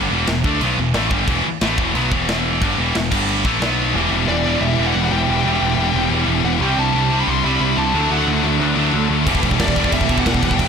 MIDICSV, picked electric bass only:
0, 0, Header, 1, 2, 480
1, 0, Start_track
1, 0, Key_signature, 1, "minor"
1, 0, Tempo, 332779
1, 1846, Time_signature, 4, 2, 24, 8
1, 15409, End_track
2, 0, Start_track
2, 0, Title_t, "Picked electric bass"
2, 0, Program_c, 0, 34
2, 159, Note_on_c, 0, 28, 94
2, 384, Note_off_c, 0, 28, 0
2, 396, Note_on_c, 0, 28, 83
2, 622, Note_off_c, 0, 28, 0
2, 636, Note_on_c, 0, 38, 100
2, 863, Note_off_c, 0, 38, 0
2, 874, Note_on_c, 0, 35, 92
2, 1102, Note_off_c, 0, 35, 0
2, 1119, Note_on_c, 0, 28, 75
2, 1345, Note_off_c, 0, 28, 0
2, 1366, Note_on_c, 0, 33, 92
2, 1586, Note_off_c, 0, 33, 0
2, 1595, Note_on_c, 0, 31, 93
2, 1824, Note_off_c, 0, 31, 0
2, 1839, Note_on_c, 0, 28, 97
2, 2067, Note_off_c, 0, 28, 0
2, 2335, Note_on_c, 0, 33, 102
2, 2556, Note_off_c, 0, 33, 0
2, 2566, Note_on_c, 0, 28, 91
2, 2792, Note_off_c, 0, 28, 0
2, 2805, Note_on_c, 0, 35, 107
2, 3032, Note_off_c, 0, 35, 0
2, 3047, Note_on_c, 0, 28, 102
2, 3721, Note_off_c, 0, 28, 0
2, 3770, Note_on_c, 0, 31, 102
2, 3996, Note_off_c, 0, 31, 0
2, 4012, Note_on_c, 0, 28, 94
2, 4237, Note_off_c, 0, 28, 0
2, 4257, Note_on_c, 0, 28, 90
2, 4480, Note_off_c, 0, 28, 0
2, 4495, Note_on_c, 0, 31, 99
2, 4943, Note_off_c, 0, 31, 0
2, 4971, Note_on_c, 0, 33, 96
2, 5198, Note_off_c, 0, 33, 0
2, 5204, Note_on_c, 0, 35, 81
2, 5658, Note_off_c, 0, 35, 0
2, 5686, Note_on_c, 0, 28, 96
2, 5892, Note_off_c, 0, 28, 0
2, 5925, Note_on_c, 0, 28, 82
2, 6131, Note_off_c, 0, 28, 0
2, 6172, Note_on_c, 0, 28, 102
2, 6575, Note_off_c, 0, 28, 0
2, 6644, Note_on_c, 0, 28, 98
2, 6851, Note_off_c, 0, 28, 0
2, 6902, Note_on_c, 0, 28, 90
2, 7102, Note_off_c, 0, 28, 0
2, 7141, Note_on_c, 0, 28, 86
2, 7340, Note_off_c, 0, 28, 0
2, 7378, Note_on_c, 0, 28, 91
2, 7579, Note_off_c, 0, 28, 0
2, 7624, Note_on_c, 0, 28, 102
2, 7822, Note_off_c, 0, 28, 0
2, 7853, Note_on_c, 0, 28, 94
2, 8056, Note_off_c, 0, 28, 0
2, 8092, Note_on_c, 0, 28, 100
2, 8295, Note_off_c, 0, 28, 0
2, 8329, Note_on_c, 0, 28, 90
2, 8533, Note_off_c, 0, 28, 0
2, 8578, Note_on_c, 0, 28, 107
2, 8778, Note_off_c, 0, 28, 0
2, 8800, Note_on_c, 0, 28, 89
2, 9008, Note_off_c, 0, 28, 0
2, 9034, Note_on_c, 0, 28, 92
2, 9244, Note_off_c, 0, 28, 0
2, 9285, Note_on_c, 0, 28, 93
2, 9490, Note_off_c, 0, 28, 0
2, 9528, Note_on_c, 0, 36, 100
2, 9732, Note_off_c, 0, 36, 0
2, 9773, Note_on_c, 0, 36, 87
2, 9975, Note_off_c, 0, 36, 0
2, 10004, Note_on_c, 0, 36, 102
2, 10408, Note_off_c, 0, 36, 0
2, 10493, Note_on_c, 0, 36, 91
2, 10694, Note_off_c, 0, 36, 0
2, 10739, Note_on_c, 0, 36, 91
2, 10937, Note_off_c, 0, 36, 0
2, 10968, Note_on_c, 0, 36, 91
2, 11170, Note_off_c, 0, 36, 0
2, 11211, Note_on_c, 0, 36, 96
2, 11412, Note_off_c, 0, 36, 0
2, 11455, Note_on_c, 0, 38, 97
2, 11654, Note_off_c, 0, 38, 0
2, 11691, Note_on_c, 0, 38, 78
2, 11891, Note_off_c, 0, 38, 0
2, 11928, Note_on_c, 0, 38, 106
2, 12129, Note_off_c, 0, 38, 0
2, 12163, Note_on_c, 0, 38, 88
2, 12367, Note_off_c, 0, 38, 0
2, 12397, Note_on_c, 0, 38, 107
2, 12603, Note_off_c, 0, 38, 0
2, 12636, Note_on_c, 0, 38, 94
2, 12842, Note_off_c, 0, 38, 0
2, 12884, Note_on_c, 0, 38, 96
2, 13086, Note_off_c, 0, 38, 0
2, 13121, Note_on_c, 0, 38, 94
2, 13324, Note_off_c, 0, 38, 0
2, 13363, Note_on_c, 0, 28, 93
2, 13565, Note_off_c, 0, 28, 0
2, 13600, Note_on_c, 0, 28, 76
2, 13803, Note_off_c, 0, 28, 0
2, 13839, Note_on_c, 0, 28, 106
2, 14241, Note_off_c, 0, 28, 0
2, 14310, Note_on_c, 0, 28, 98
2, 14516, Note_off_c, 0, 28, 0
2, 14558, Note_on_c, 0, 28, 92
2, 14760, Note_off_c, 0, 28, 0
2, 14797, Note_on_c, 0, 28, 86
2, 15000, Note_off_c, 0, 28, 0
2, 15039, Note_on_c, 0, 28, 91
2, 15240, Note_off_c, 0, 28, 0
2, 15275, Note_on_c, 0, 28, 101
2, 15409, Note_off_c, 0, 28, 0
2, 15409, End_track
0, 0, End_of_file